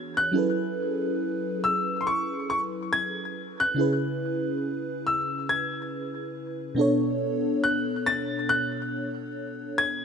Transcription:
0.00 0.29 E3 medium
0.00 0.30 B3 medium
0.00 0.30 D4 medium
0.00 0.31 F#4 medium
0.00 0.32 G#4 medium
0.00 0.32 C#5 medium
0.00 0.19 G#6 loud
0.17 1.68 F#6 loud
0.32 3.72 F#3 medium
0.32 3.73 C#4 medium
0.32 3.73 E4 medium
0.32 3.74 G#4 medium
0.37 3.74 A4 medium
0.37 3.75 B4 medium
1.64 1.98 E6 loud
2.01 2.06 C6 medium
2.07 2.48 C#6 medium
2.50 2.59 C#6 medium
2.93 3.62 G#6 loud
3.60 5.11 F#6 loud
3.75 6.72 C#3 medium
3.75 6.73 C#4 medium
3.75 6.74 E4 medium
3.79 6.74 G#4 medium
3.79 6.75 B4 medium
5.07 5.16 E6 medium
5.49 6.74 G#6 medium
6.75 10.05 B2 medium
6.75 10.05 B3 medium
6.75 10.05 D4 medium
6.79 10.05 A4 medium
6.79 10.05 C#5 medium
7.64 8.07 F#6 loud
8.06 8.50 A6 loud
8.49 9.81 F#6 loud
9.78 10.05 G#6 loud

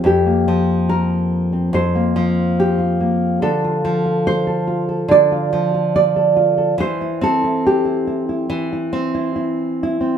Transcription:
0.00 1.72 F2 medium
0.00 0.47 F3 medium
0.06 1.52 G4 medium
0.26 1.94 A#3 soft
0.48 2.15 F3 medium
0.89 1.73 A#4 medium
1.53 2.58 C4 soft
1.73 3.41 F2 medium
1.73 2.78 C5 medium
1.95 2.99 A#3 soft
2.16 3.83 F3 medium
2.60 3.42 G4 medium
2.79 3.63 F4 soft
3.00 3.42 A#3 soft
3.42 5.07 D3 medium
3.42 4.46 A4 medium
3.64 4.04 F4 soft
3.85 5.51 F3 medium
4.05 4.66 F4 soft
4.27 5.10 C5 medium
4.47 4.87 A4 soft
4.67 5.31 F4 soft
4.89 6.15 A4 soft
5.08 6.74 D3 medium
5.08 5.94 D5 loud
5.32 5.73 F4 soft
5.53 6.80 F3 medium
5.74 6.35 F4 soft
5.96 6.80 D5 loud
6.16 6.57 A4 soft
6.36 6.74 F4 soft
6.58 6.74 A4 soft
6.78 8.48 E3 medium
6.78 7.22 C5 loud
7.01 7.43 E4 soft
7.21 8.92 C4 medium
7.21 8.51 A4 medium
7.44 7.84 E4 soft
7.67 9.81 G4 medium
7.85 8.06 E4 soft
8.07 8.28 E4 soft
8.29 8.71 E4 soft
8.50 10.18 E3 medium
8.73 9.13 E4 soft
8.93 10.00 C4 medium
9.14 9.34 E4 soft
9.36 9.82 E4 soft
9.83 10.18 E4 medium
10.01 10.18 C4 soft

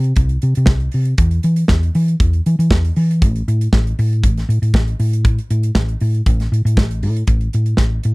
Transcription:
0.00 0.12 C3 loud
0.04 closed hi-hat soft
0.16 0.36 C2 loud
0.16 kick loud
0.16 closed hi-hat medium
0.29 closed hi-hat soft
0.42 0.53 C3 medium
0.42 closed hi-hat medium
0.55 0.66 C3 loud
0.55 closed hi-hat medium
0.66 0.87 C2 loud
0.66 kick loud
0.66 snare loud
0.80 closed hi-hat soft
0.92 1.13 C3 medium
0.92 open hi-hat medium
1.05 closed hi-hat medium
1.18 1.38 E2 loud
1.18 kick loud
1.18 closed hi-hat medium
1.31 closed hi-hat soft
1.43 1.63 E3 medium
1.43 closed hi-hat medium
1.56 closed hi-hat medium
1.68 1.89 E2 loud
1.68 kick medium
1.68 snare loud
1.83 closed hi-hat soft
1.95 2.14 E3 loud
1.95 open hi-hat medium
2.08 closed hi-hat soft
2.20 2.39 E2 loud
2.20 kick loud
2.20 closed hi-hat medium
2.33 closed hi-hat soft
2.46 2.56 E3 loud
2.46 closed hi-hat medium
2.59 2.68 E3 loud
2.59 closed hi-hat medium
2.71 2.90 E2 loud
2.71 kick loud
2.71 snare loud
2.84 closed hi-hat soft
2.96 3.24 E3 loud
2.96 open hi-hat medium
3.11 closed hi-hat soft
3.22 3.41 A1 loud
3.22 kick loud
3.22 closed hi-hat medium
3.35 closed hi-hat soft
3.48 3.67 A2 loud
3.48 closed hi-hat medium
3.61 closed hi-hat soft
3.73 3.92 A1 loud
3.73 kick loud
3.73 snare loud
3.87 closed hi-hat soft
3.99 4.25 A2 loud
3.99 open hi-hat medium
4.13 closed hi-hat soft
4.24 4.43 A1 loud
4.24 kick loud
4.24 closed hi-hat medium
4.37 snare soft
4.37 closed hi-hat soft
4.49 4.59 A2 medium
4.49 closed hi-hat medium
4.62 4.71 A2 loud
4.62 closed hi-hat medium
4.74 4.93 A1 loud
4.74 kick loud
4.74 snare loud
4.88 closed hi-hat soft
5.00 5.38 A2 loud
5.00 open hi-hat medium
5.13 closed hi-hat soft
5.25 kick loud
5.25 closed hi-hat medium
5.38 closed hi-hat soft
5.50 5.69 A2 loud
5.50 closed hi-hat medium
5.63 closed hi-hat soft
5.75 5.94 A1 medium
5.75 kick medium
5.75 snare loud
5.89 closed hi-hat soft
6.00 6.20 A2 loud
6.00 open hi-hat medium
6.15 closed hi-hat soft
6.26 6.46 A1 loud
6.26 kick loud
6.26 closed hi-hat medium
6.40 snare soft
6.40 closed hi-hat soft
6.52 6.62 A2 medium
6.52 closed hi-hat medium
6.65 6.79 A2 loud
6.65 closed hi-hat medium
6.77 7.05 A1 medium
6.77 kick loud
6.77 snare loud
6.91 closed hi-hat soft
7.03 7.22 A2 medium
7.03 open hi-hat medium
7.16 closed hi-hat medium
7.27 7.47 A1 loud
7.27 kick loud
7.27 closed hi-hat medium
7.41 closed hi-hat soft
7.53 7.73 A2 medium
7.53 closed hi-hat medium
7.66 closed hi-hat soft
7.77 7.98 A1 medium
7.77 kick medium
7.77 snare medium
8.03 8.14 A2 loud
8.03 closed hi-hat medium

